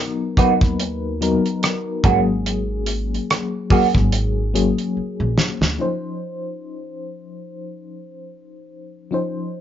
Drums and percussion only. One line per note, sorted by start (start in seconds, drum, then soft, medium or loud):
0.37 kick medium
0.37 closed hi-hat medium
0.61 kick medium
0.61 cross-stick soft
0.61 closed hi-hat soft
0.80 closed hi-hat medium
1.22 closed hi-hat medium
1.46 closed hi-hat soft
1.63 cross-stick loud
1.63 closed hi-hat medium
2.04 kick loud
2.04 closed hi-hat medium
2.46 closed hi-hat medium
2.86 closed hi-hat medium
3.14 closed hi-hat soft
3.30 cross-stick loud
3.30 closed hi-hat medium
3.70 kick medium
3.70 open hi-hat soft
3.95 kick medium
3.95 cross-stick soft
3.95 closed hi-hat soft
4.12 closed hi-hat medium
4.56 closed hi-hat medium
4.78 closed hi-hat soft
5.38 snare medium
5.62 snare medium